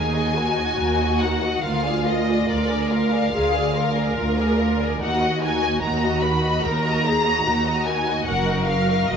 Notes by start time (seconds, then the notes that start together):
Already playing: D#2 D#4 G#4 A#4 G#5
0.15 F#4 D#5
0.35 D#4 F#4 A#4
0.57 F#4 D#5
0.78 D#2 D#4 A#4
1.00 F#4 D#5
1.19 D#4 A#4 F#5
1.44 F#4 D#5
1.62 D2 F4 A#4 F5
1.84 G#4 D5
2.05 F4 A#4 D#5
2.28 G#4 D5
2.48 D2 F4 A#4 D5
2.69 G#4 D5
2.90 F4 A#4 F5
3.11 G#4 D5
3.32 D2 F4 G#4 A#4
3.53 G#4 D5
3.73 F4 A#4
3.94 G#4 D5
4.16 D2 F4 A#4
4.38 G#4 D5
4.58 F4 A#4
4.79 G#4 D5
5.00 D#2 D#4 F#4 A#4 F#5
5.21 F#4 D#5
5.41 D#4 A#4 G#5
5.61 F#4 D#5
5.81 D#2 D#4 F#4 A#4 A#5
6.03 F#4 D#5
6.22 D#4 A#4 B5
6.43 F#4 D#5
6.64 D#2 D#4 A#4 A#5
6.84 F#4 D#5
7.04 D#4 G#4 A#4
7.25 F#4 D#5
7.44 D#2 D#4 F#4 A#4
7.65 F#4 D#5
7.86 D#4 A#4 G#5
8.08 F#4 D#5
8.24 F#1 F#2 A#4 F#5
8.28 F#4 A#4
8.48 D#4 F#4
8.66 F#4 A#4 F5
8.88 D#4 F#4
9.08 F#1 F#2 F#4 A#4 B4 D#5